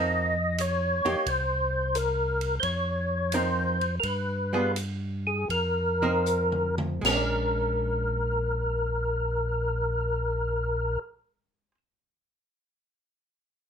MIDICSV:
0, 0, Header, 1, 5, 480
1, 0, Start_track
1, 0, Tempo, 682594
1, 894, Time_signature, 4, 2, 24, 8
1, 2342, Tempo, 722022
1, 3782, Tempo, 771208
1, 4742, Tempo, 795756
1, 8759, End_track
2, 0, Start_track
2, 0, Title_t, "Tonewheel organ"
2, 0, Program_c, 0, 16
2, 0, Note_on_c, 0, 75, 94
2, 427, Note_on_c, 0, 73, 88
2, 432, Note_off_c, 0, 75, 0
2, 900, Note_on_c, 0, 72, 95
2, 913, Note_off_c, 0, 73, 0
2, 1374, Note_on_c, 0, 70, 85
2, 1389, Note_off_c, 0, 72, 0
2, 1794, Note_off_c, 0, 70, 0
2, 1827, Note_on_c, 0, 72, 57
2, 1849, Note_on_c, 0, 73, 79
2, 1856, Note_off_c, 0, 72, 0
2, 2347, Note_on_c, 0, 72, 82
2, 2353, Note_off_c, 0, 73, 0
2, 2756, Note_off_c, 0, 72, 0
2, 2785, Note_on_c, 0, 70, 52
2, 2813, Note_off_c, 0, 70, 0
2, 2814, Note_on_c, 0, 71, 74
2, 3265, Note_off_c, 0, 71, 0
2, 3630, Note_on_c, 0, 68, 78
2, 3773, Note_off_c, 0, 68, 0
2, 3788, Note_on_c, 0, 70, 96
2, 4564, Note_off_c, 0, 70, 0
2, 4754, Note_on_c, 0, 70, 76
2, 7127, Note_off_c, 0, 70, 0
2, 8759, End_track
3, 0, Start_track
3, 0, Title_t, "Hollow-body jazz guitar"
3, 0, Program_c, 1, 26
3, 0, Note_on_c, 1, 53, 55
3, 0, Note_on_c, 1, 60, 52
3, 0, Note_on_c, 1, 63, 54
3, 0, Note_on_c, 1, 70, 64
3, 235, Note_off_c, 1, 53, 0
3, 236, Note_off_c, 1, 60, 0
3, 238, Note_off_c, 1, 63, 0
3, 240, Note_off_c, 1, 70, 0
3, 740, Note_on_c, 1, 58, 54
3, 741, Note_on_c, 1, 63, 60
3, 744, Note_on_c, 1, 67, 69
3, 877, Note_off_c, 1, 58, 0
3, 878, Note_off_c, 1, 63, 0
3, 879, Note_off_c, 1, 67, 0
3, 2347, Note_on_c, 1, 53, 51
3, 2350, Note_on_c, 1, 60, 55
3, 2353, Note_on_c, 1, 63, 54
3, 2356, Note_on_c, 1, 70, 60
3, 2632, Note_off_c, 1, 53, 0
3, 2634, Note_off_c, 1, 60, 0
3, 2635, Note_off_c, 1, 63, 0
3, 2636, Note_off_c, 1, 70, 0
3, 3139, Note_on_c, 1, 55, 59
3, 3145, Note_on_c, 1, 59, 58
3, 3147, Note_on_c, 1, 65, 56
3, 3148, Note_on_c, 1, 68, 66
3, 3276, Note_off_c, 1, 55, 0
3, 3278, Note_off_c, 1, 59, 0
3, 3279, Note_off_c, 1, 65, 0
3, 3280, Note_off_c, 1, 68, 0
3, 4109, Note_on_c, 1, 53, 55
3, 4112, Note_on_c, 1, 60, 62
3, 4112, Note_on_c, 1, 63, 62
3, 4117, Note_on_c, 1, 70, 59
3, 4713, Note_off_c, 1, 53, 0
3, 4715, Note_off_c, 1, 60, 0
3, 4715, Note_off_c, 1, 63, 0
3, 4717, Note_off_c, 1, 70, 0
3, 4727, Note_on_c, 1, 56, 54
3, 4767, Note_on_c, 1, 61, 60
3, 4800, Note_on_c, 1, 62, 55
3, 7560, Note_off_c, 1, 56, 0
3, 7580, Note_off_c, 1, 61, 0
3, 7597, Note_off_c, 1, 62, 0
3, 8759, End_track
4, 0, Start_track
4, 0, Title_t, "Tonewheel organ"
4, 0, Program_c, 2, 16
4, 0, Note_on_c, 2, 41, 81
4, 714, Note_off_c, 2, 41, 0
4, 737, Note_on_c, 2, 41, 36
4, 814, Note_off_c, 2, 41, 0
4, 887, Note_on_c, 2, 36, 81
4, 1821, Note_off_c, 2, 36, 0
4, 1850, Note_on_c, 2, 41, 77
4, 2782, Note_off_c, 2, 41, 0
4, 2808, Note_on_c, 2, 43, 78
4, 3753, Note_off_c, 2, 43, 0
4, 3778, Note_on_c, 2, 41, 77
4, 4715, Note_off_c, 2, 41, 0
4, 4735, Note_on_c, 2, 34, 86
4, 7118, Note_off_c, 2, 34, 0
4, 8759, End_track
5, 0, Start_track
5, 0, Title_t, "Drums"
5, 410, Note_on_c, 9, 44, 50
5, 410, Note_on_c, 9, 51, 66
5, 480, Note_off_c, 9, 44, 0
5, 480, Note_off_c, 9, 51, 0
5, 742, Note_on_c, 9, 51, 40
5, 812, Note_off_c, 9, 51, 0
5, 889, Note_on_c, 9, 51, 57
5, 891, Note_on_c, 9, 36, 33
5, 959, Note_off_c, 9, 51, 0
5, 961, Note_off_c, 9, 36, 0
5, 1370, Note_on_c, 9, 44, 47
5, 1370, Note_on_c, 9, 51, 56
5, 1441, Note_off_c, 9, 44, 0
5, 1441, Note_off_c, 9, 51, 0
5, 1694, Note_on_c, 9, 51, 44
5, 1765, Note_off_c, 9, 51, 0
5, 1848, Note_on_c, 9, 51, 54
5, 1850, Note_on_c, 9, 36, 31
5, 1918, Note_off_c, 9, 51, 0
5, 1920, Note_off_c, 9, 36, 0
5, 2334, Note_on_c, 9, 44, 52
5, 2334, Note_on_c, 9, 51, 61
5, 2401, Note_off_c, 9, 44, 0
5, 2401, Note_off_c, 9, 51, 0
5, 2662, Note_on_c, 9, 51, 38
5, 2728, Note_off_c, 9, 51, 0
5, 2808, Note_on_c, 9, 51, 52
5, 2810, Note_on_c, 9, 36, 30
5, 2875, Note_off_c, 9, 51, 0
5, 2876, Note_off_c, 9, 36, 0
5, 3292, Note_on_c, 9, 44, 52
5, 3292, Note_on_c, 9, 51, 58
5, 3359, Note_off_c, 9, 44, 0
5, 3359, Note_off_c, 9, 51, 0
5, 3782, Note_on_c, 9, 36, 28
5, 3784, Note_on_c, 9, 51, 50
5, 3844, Note_off_c, 9, 36, 0
5, 3846, Note_off_c, 9, 51, 0
5, 4257, Note_on_c, 9, 44, 54
5, 4319, Note_off_c, 9, 44, 0
5, 4419, Note_on_c, 9, 47, 49
5, 4481, Note_off_c, 9, 47, 0
5, 4580, Note_on_c, 9, 47, 72
5, 4642, Note_off_c, 9, 47, 0
5, 4746, Note_on_c, 9, 38, 89
5, 4746, Note_on_c, 9, 49, 79
5, 4807, Note_off_c, 9, 38, 0
5, 4807, Note_off_c, 9, 49, 0
5, 8759, End_track
0, 0, End_of_file